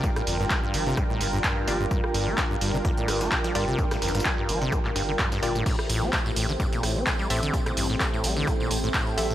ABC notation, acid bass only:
X:1
M:4/4
L:1/16
Q:"Swing 16ths" 1/4=128
K:Gdor
V:1 name="Acid bass" clef=bass
G,, A,, F,, G,, z G,, F, C, G,, A,, G,, G,, G,,2 F, G,, | G,, z G,, B, G,, G,, G,, C, F,, A,, G,, B, G,, F, G,, C, | G,, A,, F,, G,, z G,, F, C, G,, A,, G,, D, G,, G,, B,, A,, | z2 A,, C A,, A,, A,, D, G,, B,, A,, C A,, G, A,, D, |
A,, B,, G,, A,, z A,, G, D, A,, B,, A,, A,, A,,2 G, A,, |]